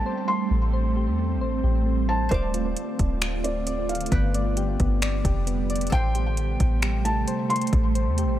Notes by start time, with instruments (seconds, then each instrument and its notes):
Already playing: ambient pad G3 A3 C4, synth keys A3 G4, guzheng A4 G5 C6, felt piano A5
0.06 synth keys C5
0.28 felt piano C6
0.51 808-style bass A1, synth keys A3
0.73 synth keys C5
0.97 synth keys G4
1.08 808-style bass E2
1.19 synth keys A3
1.36 808-style bass A1
1.41 synth keys C5
1.64 808-style bass A1, synth keys G4
1.86 synth keys A3
2.09 synth keys C5, felt piano A5
2.29 808-style bass D1, ambient pad D3 A3 F4, guzheng C5 F5, felt piano C5, synth keys D5, kick, closed hi-hat
2.34 guzheng D6
2.54 synth keys F4, closed hi-hat
2.77 closed hi-hat
2.99 808-style bass D1, kick, closed hi-hat
3.21 synth keys F4, finger snap, closed hi-hat
3.44 synth keys C4, felt piano D5, closed hi-hat
3.67 synth keys D5, closed hi-hat
3.89 felt piano F5, closed hi-hat
3.95 closed hi-hat
4.01 closed hi-hat
4.06 closed hi-hat
4.12 808-style bass G1, ambient pad G3 B3, synth keys B3, guzheng B4 G5, kick, closed hi-hat
4.34 synth keys D5, closed hi-hat
4.57 synth keys G4, closed hi-hat
4.80 808-style bass G1, synth keys B3, kick, closed hi-hat
5.02 synth keys D5, finger snap, closed hi-hat
5.25 808-style bass F1, synth keys G4, kick, closed hi-hat
5.47 synth keys B3, closed hi-hat
5.70 synth keys D5, closed hi-hat
5.76 closed hi-hat
5.81 closed hi-hat
5.87 guzheng A4, closed hi-hat
5.92 808-style bass A1, ambient pad C3 A3, synth keys C5, guzheng G5 C6, felt piano G5, kick, closed hi-hat
6.15 synth keys G4, closed hi-hat
6.37 closed hi-hat
6.60 808-style bass A1, kick, closed hi-hat
6.82 synth keys G4, finger snap, closed hi-hat
7.05 synth keys A3, felt piano A5, closed hi-hat
7.28 synth keys C5, closed hi-hat
7.50 felt piano C6, closed hi-hat
7.56 closed hi-hat
7.61 closed hi-hat
7.67 closed hi-hat
7.73 808-style bass A1, synth keys A3, kick, closed hi-hat
7.95 synth keys C5, closed hi-hat
8.07 808-style bass E2
8.18 synth keys G4, closed hi-hat
8.24 808-style bass A1